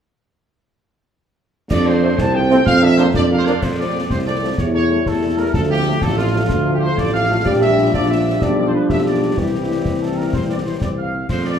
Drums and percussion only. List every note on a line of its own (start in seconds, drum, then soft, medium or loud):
1.71 concert bass drum medium
1.71 snare medium
1.71 crash medium
2.18 concert bass drum medium
2.18 snare medium
2.51 snare medium
2.67 concert bass drum medium
2.67 snare medium
2.98 snare medium
3.14 concert bass drum medium
3.14 snare medium
3.47 snare medium
3.62 concert bass drum medium
3.62 snare medium
3.62 crash soft
4.10 concert bass drum medium
4.10 snare medium
4.58 concert bass drum medium
4.58 snare medium
5.06 concert bass drum medium
5.06 snare medium
5.54 concert bass drum medium
5.54 snare medium
6.02 concert bass drum medium
6.02 snare medium
6.49 concert bass drum medium
6.49 snare medium
6.98 concert bass drum medium
6.98 snare medium
7.46 concert bass drum medium
7.46 snare medium
7.46 crash soft
7.94 concert bass drum medium
7.94 snare medium
8.42 concert bass drum medium
8.42 snare medium
8.90 concert bass drum medium
8.90 snare medium
9.38 concert bass drum medium
9.38 snare medium
9.85 concert bass drum medium
9.85 snare medium
10.33 concert bass drum medium
10.33 snare medium
10.81 concert bass drum medium
10.81 snare medium
11.29 concert bass drum medium
11.29 snare medium
11.29 crash soft